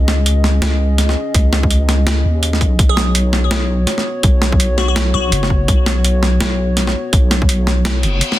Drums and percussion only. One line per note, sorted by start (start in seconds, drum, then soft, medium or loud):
0.08 snare medium
0.26 closed hi-hat medium
0.44 snare medium
0.62 snare loud
0.62 closed hi-hat medium
0.98 snare soft
0.98 closed hi-hat medium
1.09 snare soft
1.34 kick loud
1.34 closed hi-hat medium
1.53 snare medium
1.63 kick loud
1.71 closed hi-hat medium
1.89 snare medium
1.89 closed hi-hat soft
2.07 snare loud
2.07 closed hi-hat medium
2.43 closed hi-hat medium
2.53 snare soft
2.61 kick medium
2.61 closed hi-hat soft
2.79 kick loud
2.79 closed hi-hat medium
2.97 snare medium
3.15 closed hi-hat medium
3.33 snare soft
3.51 snare loud
3.51 closed hi-hat medium
3.87 snare soft
3.87 closed hi-hat medium
3.98 snare soft
4.23 kick loud
4.23 closed hi-hat medium
4.42 snare medium
4.52 kick loud
4.60 closed hi-hat medium
4.78 snare medium
4.96 snare loud
4.96 closed hi-hat medium
5.32 closed hi-hat medium
5.43 snare soft
5.50 kick medium
5.68 kick loud
5.68 closed hi-hat medium
5.86 snare medium
6.04 closed hi-hat medium
6.23 snare medium
6.41 snare loud
6.41 closed hi-hat medium
6.77 snare soft
6.77 closed hi-hat medium
6.87 snare soft
7.13 kick loud
7.13 closed hi-hat medium
7.31 snare medium
7.31 closed hi-hat soft
7.42 kick loud
7.49 closed hi-hat medium
7.67 snare medium
7.85 snare loud
7.85 closed hi-hat medium
8.03 closed hi-hat soft
8.21 closed hi-hat medium
8.32 snare soft